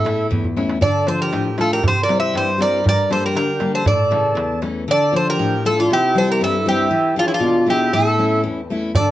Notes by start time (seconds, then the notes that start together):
Already playing: A2 E4 A4
0.04 A3 C#4 E4, darbuka tek
0.31 E2, darbuka dum
0.44 darbuka dum
0.56 A3 C#4 E4, darbuka tek
0.69 darbuka tek
0.81 D3 A4 D5, darbuka dum
1.06 F3 D4 F4 A4 C5, darbuka tek
1.19 G4 A#4, darbuka tek
1.33 A2, darbuka tek
1.44 darbuka tek
1.58 A3 D4 F4 A4, darbuka tek
1.71 G4 A#4, darbuka tek
1.83 C3 G4, darbuka dum
1.87 C5
2.02 A#4 D5
2.09 G3 C4 E4, darbuka tek
2.18 C5 E5
2.33 G2 G4, darbuka tek
2.37 C5
2.47 darbuka tek
2.58 G3 C4 E4 A#4 D5, darbuka tek
2.73 darbuka tek
2.84 G2 A#4, darbuka dum
2.89 D5
3.10 G3 A#3 D4 A4 C5, darbuka tek
3.23 G4 A#4, darbuka tek
3.35 D3 G4 A#4, darbuka tek
3.48 darbuka tek
3.60 G3 A#3 D4, darbuka tek
3.74 A4 C5, darbuka tek
3.86 A2 A4 D5, darbuka dum
3.99 darbuka tek
4.11 C#3 E3 A3, darbuka tek
4.24 darbuka tek
4.35 E2, darbuka tek
4.62 E3 A3 C#4, darbuka tek
4.88 D3 A4 D5
5.12 F3 D4 F4 A4
5.16 C5
5.29 G4 A#4
5.39 A2
5.65 A3 D4 F4 A4
5.80 D4 F4
5.91 C3 E4 G4
6.15 G3 C4 E4 A4 C5
6.29 G4 A#4
6.41 G2 E4 A4
6.65 G3 C4 E4 G4
6.90 E3
7.16 E3 D4 F4 G#4
7.25 C#4 E4
7.32 D4 F4
7.40 B2
7.66 D4 E4 G4 G#4
7.93 A2 E4 A4
8.18 A3 C#4 E4
8.43 E2
8.70 A3 C#4 E4
8.95 D3 A4 D5, darbuka dum